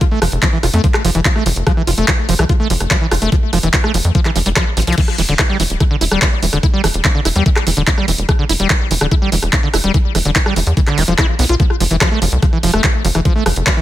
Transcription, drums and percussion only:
0.01 kick loud
0.01 closed hi-hat medium
0.22 cross-stick medium
0.22 open hi-hat loud
0.32 closed hi-hat medium
0.42 kick loud
0.42 clap loud
0.42 closed hi-hat medium
0.63 cross-stick soft
0.63 open hi-hat loud
0.74 closed hi-hat medium
0.84 kick loud
0.84 closed hi-hat medium
0.94 cross-stick medium
0.94 clap soft
1.05 open hi-hat loud
1.15 closed hi-hat medium
1.25 kick loud
1.25 clap loud
1.25 closed hi-hat medium
1.36 cross-stick soft
1.46 open hi-hat loud
1.56 closed hi-hat medium
1.67 kick loud
1.67 cross-stick medium
1.67 closed hi-hat medium
1.87 open hi-hat loud
1.98 closed hi-hat medium
2.08 kick loud
2.08 cross-stick soft
2.08 clap loud
2.08 closed hi-hat medium
2.29 open hi-hat loud
2.39 cross-stick medium
2.39 closed hi-hat medium
2.49 kick loud
2.49 closed hi-hat medium
2.70 open hi-hat loud
2.80 cross-stick soft
2.80 closed hi-hat medium
2.91 kick loud
2.91 clap loud
2.91 closed hi-hat medium
3.11 cross-stick medium
3.11 open hi-hat loud
3.22 closed hi-hat medium
3.32 kick loud
3.32 closed hi-hat medium
3.53 cross-stick soft
3.53 open hi-hat loud
3.63 closed hi-hat medium
3.74 kick loud
3.74 clap loud
3.74 closed hi-hat medium
3.84 cross-stick medium
3.94 open hi-hat loud
4.05 closed hi-hat medium
4.15 kick loud
4.15 closed hi-hat medium
4.25 cross-stick soft
4.25 clap soft
4.36 open hi-hat loud
4.46 closed hi-hat medium
4.56 kick loud
4.56 cross-stick medium
4.56 clap loud
4.56 closed hi-hat medium
4.77 closed hi-hat medium
4.77 open hi-hat loud
4.82 closed hi-hat medium
4.87 closed hi-hat medium
4.92 closed hi-hat medium
4.98 kick loud
4.98 closed hi-hat medium
4.98 crash medium
5.08 cross-stick soft
5.18 open hi-hat loud
5.29 closed hi-hat medium
5.39 kick loud
5.39 cross-stick medium
5.39 clap loud
5.39 closed hi-hat medium
5.60 open hi-hat loud
5.70 closed hi-hat medium
5.80 kick loud
5.80 cross-stick soft
5.80 closed hi-hat medium
6.01 open hi-hat loud
6.11 cross-stick medium
6.11 closed hi-hat medium
6.22 kick loud
6.22 clap loud
6.22 closed hi-hat medium
6.43 open hi-hat loud
6.53 cross-stick soft
6.53 closed hi-hat medium
6.63 kick loud
6.63 closed hi-hat medium
6.84 cross-stick medium
6.84 open hi-hat loud
6.94 closed hi-hat medium
7.05 kick loud
7.05 clap loud
7.05 closed hi-hat medium
7.25 cross-stick soft
7.25 open hi-hat loud
7.36 closed hi-hat medium
7.46 kick loud
7.46 closed hi-hat medium
7.56 cross-stick medium
7.56 clap soft
7.67 open hi-hat loud
7.77 closed hi-hat medium
7.87 kick loud
7.87 clap loud
7.87 closed hi-hat medium
7.98 cross-stick soft
8.08 open hi-hat loud
8.18 closed hi-hat medium
8.29 kick loud
8.29 cross-stick medium
8.29 closed hi-hat medium
8.49 open hi-hat loud
8.60 closed hi-hat medium
8.70 kick loud
8.70 cross-stick soft
8.70 clap loud
8.70 closed hi-hat medium
8.91 open hi-hat loud
9.01 cross-stick medium
9.01 closed hi-hat medium
9.11 kick loud
9.11 closed hi-hat medium
9.32 open hi-hat loud
9.43 cross-stick soft
9.43 closed hi-hat medium
9.53 kick loud
9.53 clap loud
9.53 closed hi-hat medium
9.74 cross-stick medium
9.74 open hi-hat loud
9.84 closed hi-hat medium
9.94 kick loud
9.94 closed hi-hat medium
10.15 cross-stick soft
10.15 open hi-hat loud
10.25 closed hi-hat medium
10.36 kick loud
10.36 clap loud
10.36 closed hi-hat medium
10.46 cross-stick medium
10.56 open hi-hat loud
10.67 closed hi-hat medium
10.77 kick loud
10.77 closed hi-hat medium
10.87 cross-stick soft
10.87 clap soft
10.98 open hi-hat loud
11.08 closed hi-hat medium
11.18 kick loud
11.18 cross-stick medium
11.18 clap loud
11.18 closed hi-hat medium
11.39 open hi-hat loud
11.49 closed hi-hat medium
11.60 kick loud
11.60 closed hi-hat medium
11.70 cross-stick soft
11.80 open hi-hat loud
11.91 closed hi-hat medium
12.01 kick loud
12.01 cross-stick medium
12.01 clap loud
12.01 closed hi-hat medium
12.22 open hi-hat loud
12.32 closed hi-hat medium
12.43 kick loud
12.43 cross-stick soft
12.43 closed hi-hat medium
12.63 open hi-hat loud
12.74 cross-stick medium
12.74 closed hi-hat medium
12.84 kick loud
12.84 clap loud
12.84 closed hi-hat medium
13.05 open hi-hat loud
13.15 cross-stick soft
13.15 closed hi-hat medium
13.25 kick loud
13.25 closed hi-hat medium
13.46 cross-stick medium
13.46 open hi-hat loud
13.56 closed hi-hat medium
13.67 kick loud
13.67 clap loud
13.67 closed hi-hat medium

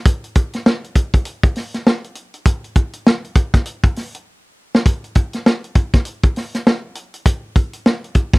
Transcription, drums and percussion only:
0.05 kick loud
0.05 closed hi-hat loud
0.24 closed hi-hat soft
0.35 kick medium
0.35 closed hi-hat medium
0.53 snare soft
0.53 closed hi-hat medium
0.66 snare loud
0.84 closed hi-hat soft
0.95 kick medium
0.95 closed hi-hat medium
1.14 kick medium
1.14 closed hi-hat medium
1.25 closed hi-hat medium
1.43 kick loud
1.43 closed hi-hat soft
1.56 snare soft
1.56 open hi-hat medium
1.74 snare soft
1.74 closed hi-hat medium
1.87 snare loud
2.04 closed hi-hat soft
2.15 closed hi-hat medium
2.34 closed hi-hat soft
2.46 kick loud
2.46 closed hi-hat loud
2.64 closed hi-hat soft
2.76 kick medium
2.76 closed hi-hat medium
2.93 closed hi-hat medium
3.07 snare medium
3.24 closed hi-hat soft
3.35 kick medium
3.35 closed hi-hat medium
3.54 kick medium
3.54 snare soft
3.54 closed hi-hat soft
3.66 closed hi-hat medium
3.84 kick medium
3.84 closed hi-hat soft
3.96 snare soft
3.96 open hi-hat medium
4.15 closed hi-hat medium
4.75 snare medium
4.86 kick loud
4.86 closed hi-hat loud
5.04 closed hi-hat soft
5.15 kick medium
5.15 closed hi-hat medium
5.33 snare soft
5.33 closed hi-hat soft
5.46 snare loud
5.64 closed hi-hat soft
5.75 kick medium
5.75 closed hi-hat medium
5.93 kick loud
5.93 snare soft
5.93 closed hi-hat medium
6.05 closed hi-hat medium
6.24 kick medium
6.24 closed hi-hat soft
6.36 snare soft
6.36 open hi-hat medium
6.54 snare soft
6.54 closed hi-hat medium
6.67 snare loud
6.95 closed hi-hat medium
7.14 closed hi-hat medium
7.26 kick loud
7.26 closed hi-hat loud
7.56 kick medium
7.56 closed hi-hat medium
7.73 closed hi-hat medium
7.86 snare medium
8.04 closed hi-hat soft
8.15 kick medium
8.15 closed hi-hat medium
8.33 kick loud
8.33 snare soft
8.33 closed hi-hat soft

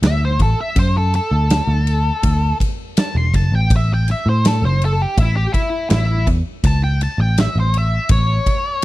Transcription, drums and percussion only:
0.03 snare loud
0.03 ride medium
0.39 kick medium
0.39 ride medium
0.76 kick loud
0.76 ride medium
1.14 ride medium
1.50 snare loud
1.50 ride medium
1.87 ride medium
2.23 kick loud
2.23 ride medium
2.60 kick medium
2.60 ride medium
2.97 snare loud
2.97 ride medium
3.34 kick medium
3.34 ride medium
3.70 kick loud
3.70 ride medium
4.08 snare soft
4.08 ride medium
4.45 snare loud
4.45 ride medium
4.82 ride medium
5.18 kick loud
5.18 ride medium
5.54 kick medium
5.54 ride medium
5.90 snare loud
5.90 ride medium
6.27 kick medium
6.27 ride medium
6.64 kick loud
6.64 ride medium
7.01 ride medium
7.38 snare loud
7.38 ride medium
7.74 ride medium
8.09 kick loud
8.09 ride medium
8.46 kick medium
8.46 ride medium

